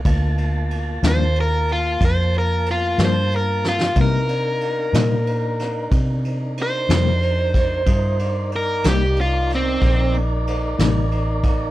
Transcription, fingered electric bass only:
\new Staff \with { instrumentName = "Fingered electric bass" } { \clef bass \time 12/8 \key c \dorian \tempo 4. = 61 d,4. ees,4. f,4. g,4. | c4. bes,4. c4. f,4. | g,4. c,4. bes,,4. a,,4. | }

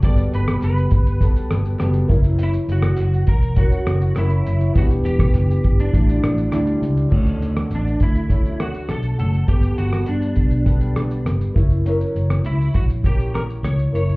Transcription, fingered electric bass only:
\new Staff \with { instrumentName = "Fingered electric bass" } { \clef bass \time 4/4 \key d \major \tempo 4 = 101 g,,8 g,,8 fis,,8 g,,8. r16 g,,8 fis,,8 fis,,8~ | fis,,8 fis,,8 fis,,8 e,,8. r16 fis,,8 fis,,8 fis,,8 | e,,8 e,,8 fis,,8 g,,8 a,,8 a,,8 d,8 cis,8 | d,8 d,8 a,,8 d,4. b,,8 fis,,8 |
g,,8 g,,8 g,8 b,,4. g,,8 fis,,8~ | fis,,8 fis,,8 cis,8 ais,,4. cis,8 fis,,8 | }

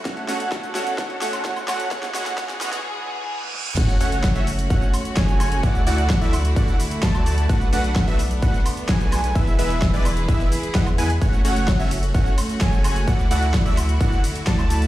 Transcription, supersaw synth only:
\new Staff \with { instrumentName = "Supersaw synth" } { \time 4/4 \key fis \minor \tempo 4 = 129 <a cis' fis' cis'' fis''>8 <a cis' fis' cis'' fis''>8 <a cis' fis' cis'' fis''>8 <a cis' fis' cis'' fis''>8 <a cis' fis' cis'' fis''>8 <a cis' fis' cis'' fis''>8 <a cis' fis' cis'' fis''>8 <a cis' fis' cis'' fis''>8 | <gis cis' fis' cis'' fis''>8 <gis cis' fis' cis'' fis''>8 <gis cis' fis' cis'' fis''>8 <gis cis' fis' cis'' fis''>8 r2 | <a cis' fis' cis'' fis''>8 <a cis' fis' cis'' fis''>8. <a cis' fis' cis'' e''>16 r8 <a cis' fis' cis'' fis''>8 r8 <a cis' fis' cis'' gis''>4 | <a e' fis' d'' fis''>8 <a e' fis' d'' fis''>8. <a e' fis' d'' e''>16 r8 <a e' fis' d'' fis''>8 r8 <a e' fis' d'' a''>4 |
<a d' fis' b' fis''>8 <a d' fis' b' fis''>8. <a d' fis' b' e''>16 r8 <a d' fis' b' fis''>8 r8 <a d' fis' b' gis''>4 | <gis b e' b' e''>8 <gis b e' b' e''>8. <gis b e' b' d''>16 r8 <gis b e' b' e''>8 r8 <gis b e' b' fis''>16 r16 <gis b e' b' gis''>16 r16 | <a cis' fis' cis'' fis''>8 <a cis' fis' cis'' fis''>8. <a cis' fis' cis'' e''>16 r8 <a cis' fis' cis'' fis''>8 r8 <a cis' fis' cis'' gis''>4 | <a e' fis' d'' fis''>8 <a e' fis' d'' fis''>8. <a e' fis' d'' e''>16 r8 <a e' fis' d'' fis''>8 r8 <a e' fis' d'' a''>4 | }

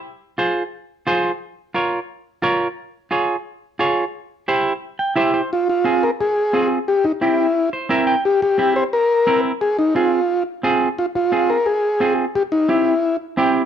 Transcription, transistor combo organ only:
\new Staff \with { instrumentName = "Transistor combo organ" } { \time 4/4 \key f \minor \tempo 4 = 176 r1 | r1 | r1 | r1 |
f'8 f'4 bes'8 aes'4. r8 | g'8 ees'8 e'4. r4. | g'8 g'4 c''8 bes'4. r8 | aes'8 ees'8 f'4. r4. |
f'8 f'4 bes'8 aes'4. r8 | g'8 ees'8 e'4. r4. | }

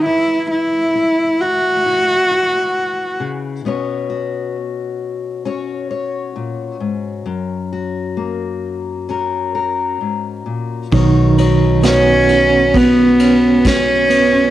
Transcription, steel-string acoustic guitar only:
\new Staff \with { instrumentName = "Steel-string acoustic guitar" } { \time 4/4 \key b \major \tempo 4 = 66 << { r2 e'8 e'4. | <b cis' fis' cis''>8 fis'4. <cis' fis' cis''>8 cis''4. | r8 fis'4. <cis' fis' ais'>8 ais'4. | <dis' fis' cis''>8 <dis' fis' cis''>8 fis'2. | } \\ { e4 e'4 r4. cis8 | b,2. ais,8 gis,8 | fis,4 ais2 gis,8 ais,8 | b,2 b2 | } >> }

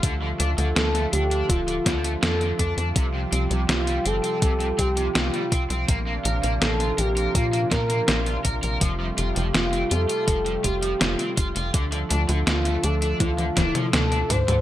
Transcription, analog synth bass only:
\new Staff \with { instrumentName = "Analog synth bass" } { \clef bass \time 4/4 \key d \minor \tempo 4 = 82 d,8 d,16 d,16 d,8 d,8 d,,8 d,8 f,8 f,16 f,16 | c,8 c,16 c,16 c,8 g,,16 r16 c,8 c,8 c,16 r16 c,16 c,16 | bes,,8 bes,,16 bes,,16 bes,,8 bes,,8 bes,8 bes,8 bes,,8 bes,,16 bes,,16 | f,,8 f,,16 f,,16 f,,8 f,16 r16 f,,8 f,,8 f,,16 r16 f,,16 f,,16 |
d,8 d,16 d,16 d,8 d,8 d,8 d,,16 r16 d,8 d,16 d,16 | }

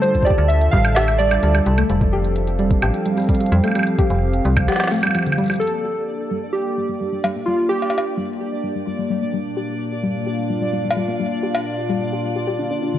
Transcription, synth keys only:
\new Staff \with { instrumentName = "Synth keys" } { \time 4/4 \key g \minor \tempo 4 = 129 c''8 d''8 e''8 f''8 e''8 d''4 r8 | r1 | r1 | a'2 g'4. r8 |
f'8 g'4 r2 r8 | r1 | r1 | }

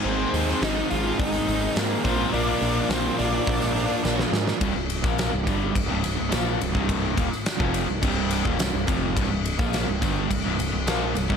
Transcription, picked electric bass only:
\new Staff \with { instrumentName = "Picked electric bass" } { \clef bass \time 4/4 \key c \minor \tempo 4 = 105 aes,,8 ees,8 aes,,8 aes,,8 aes,,8 aes,,8 aes,8 bes,,8 | bes,,8 bes,,8 bes,,8 bes,,8 bes,,4 bes,,8 aes,8 | c,,16 c,,8 bes,,8 c,,16 g,,8 c,,16 c,,16 c,,16 c,,16 bes,,8 c,,16 c,,16~ | c,,8 ees,,16 r8 f,,8 c,,16 c,,8. ees,,16 c,,16 c,,16 f,,8 |
c,,16 c,,8 bes,,8 c,,16 g,,8 c,,16 c,,16 c,,16 c,,16 bes,,8 c,,16 c,,16 | }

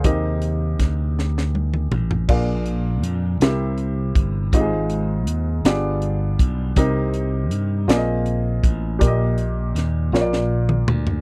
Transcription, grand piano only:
<<
  \new Staff \with { instrumentName = "Grand piano" } { \time 6/8 \key ees \major \tempo 4. = 54 << { <aes' f''>16 r2 r8. | r2. | r2. | r2. |
r2. | } \\ { <c' ees' g' bes' ees''>2. | <d' f' aes' bes' f''>4. <c' e' g' bes' e''>4. | <c' ees' f' g' aes' ees''>4. <b f' g' aes' d''>4. | <c' ees' g' bes' ees''>4. <c' f' aes' bes' d'' ees''>4. |
<g' bes' d'' ees''>4. <f' bes' des'' d''>4. | } >> }
  \new Staff \with { instrumentName = "Grand piano" } { \clef bass \time 6/8 \key ees \major c4. r4. | bes,4. c4. | aes,4. g,4. | c4. bes4. |
bes,4. bes,4. | }
>>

